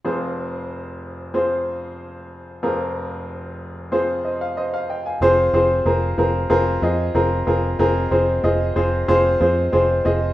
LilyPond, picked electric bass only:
\new Staff \with { instrumentName = "Picked electric bass" } { \clef bass \time 4/4 \key f \minor \tempo 4 = 93 r1 | r1 | f,,8 f,,8 f,,8 f,,8 f,,8 f,8 f,,8 f,,8 | f,,8 f,,8 f,,8 f,,8 f,,8 f,8 f,,8 f,,8 | }